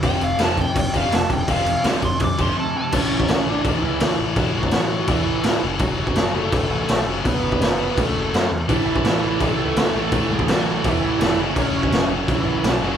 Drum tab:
CC |x-x-x-x-x-x-x-x-|x-x-x-x-x-x-----|x---x---x---x---|x---x---x---x---|
SD |----o-------o---|----o-----------|----o-------o---|----o-------o---|
BD |o-----o-o-o---o-|o-----o-o-o-----|o--o----o-------|o--o----o-------|

CC |x---x---x---x---|x---x---x---x---|x---x---x---x---|x---x---x---x---|
SD |----o-------o---|----o-------o---|----o-------o---|----o-------o---|
BD |o--o----o-------|o--o----o-------|o--o----o-------|o--o----o-------|

CC |x---x---x---x---|
SD |----o-------o---|
BD |o--o----o-------|